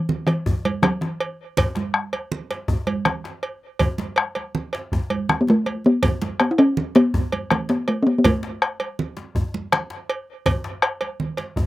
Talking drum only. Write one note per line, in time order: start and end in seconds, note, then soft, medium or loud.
0.00 0.26 E3 medium
0.27 0.84 E3 medium
0.83 1.03 F#3 medium
1.01 1.44 E3 medium
5.41 5.51 B3 medium
5.50 5.87 A3 medium
5.86 6.40 B3 medium
6.40 6.50 B3 medium
6.51 6.60 E4 medium
6.59 6.97 C#4 medium
6.96 7.52 B3 medium
7.51 7.71 A3 medium
7.70 7.88 B3 medium
7.88 8.01 A3 medium
8.03 8.08 C#4 medium
8.07 8.18 B3 medium
8.18 8.27 B3 medium
8.26 8.99 A3 medium